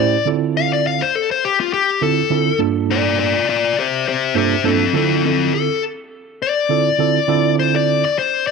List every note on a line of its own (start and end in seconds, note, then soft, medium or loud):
0.00 0.16 A2 medium
0.00 0.16 C#4 medium
0.00 0.16 E4 medium
0.00 0.16 G4 medium
0.00 0.16 C5 medium
0.00 0.26 D5 loud
0.25 1.01 D3 medium
0.25 1.01 C4 medium
0.25 1.01 E4 medium
0.25 1.01 F4 medium
0.25 1.02 A4 medium
0.57 0.72 F5 loud
0.73 0.85 D5 medium
0.87 1.01 F5 medium
1.02 1.15 C5 medium
1.15 1.30 A4 medium
1.31 1.43 C5 medium
1.45 1.59 G4 medium
1.60 1.72 F4 medium
1.73 2.01 G4 medium
2.01 2.21 D3 medium
2.01 2.21 C4 medium
2.01 2.21 E4 medium
2.01 2.21 F4 medium
2.01 2.21 A4 medium
2.01 2.59 A4 medium
2.30 2.50 D3 medium
2.30 2.50 C4 medium
2.30 2.50 E4 medium
2.30 2.50 F4 medium
2.30 2.51 A4 medium
2.59 3.34 G2 medium
2.59 3.34 A#3 medium
2.59 3.35 D4 medium
2.59 3.35 F4 medium
2.59 3.35 A4 medium
2.91 3.18 F4 medium
2.91 3.19 D5 medium
3.19 3.46 F4 medium
3.19 3.47 D5 medium
3.49 3.76 F4 medium
3.49 3.77 D5 medium
3.79 4.05 G4 medium
3.79 4.07 C5 medium
4.08 4.34 G4 medium
4.08 4.36 C5 medium
4.34 4.54 G2 medium
4.34 4.54 A#3 medium
4.34 4.55 D4 medium
4.34 4.55 F4 medium
4.34 4.64 G4 medium
4.34 4.55 A4 medium
4.34 4.65 C5 medium
4.64 4.84 G2 medium
4.64 4.84 A#3 medium
4.64 4.93 C4 medium
4.64 4.84 D4 medium
4.64 4.84 F4 medium
4.64 4.84 A4 medium
4.64 4.95 A4 medium
4.93 5.68 D3 medium
4.93 5.69 C4 medium
4.93 5.22 C4 medium
4.93 5.69 E4 medium
4.93 5.69 F4 medium
4.93 5.69 A4 medium
4.93 5.24 A4 loud
5.25 5.51 C4 medium
5.25 5.53 A4 medium
5.55 5.82 A4 loud
6.42 7.55 D5 medium
6.69 6.89 D3 medium
6.69 6.89 C4 medium
6.69 6.89 E4 medium
6.69 6.89 F4 medium
6.69 6.90 A4 medium
6.99 7.18 D3 medium
6.99 7.18 C4 medium
6.99 7.18 E4 medium
6.99 7.18 F4 medium
6.99 7.19 A4 medium
7.28 8.03 D3 medium
7.28 8.03 C4 medium
7.28 8.03 E4 medium
7.28 8.03 F4 medium
7.28 8.04 A4 medium
7.59 7.74 C5 medium
7.76 8.03 D5 medium
8.05 8.17 D5 medium
8.19 8.46 C5 medium
8.47 8.51 D5 medium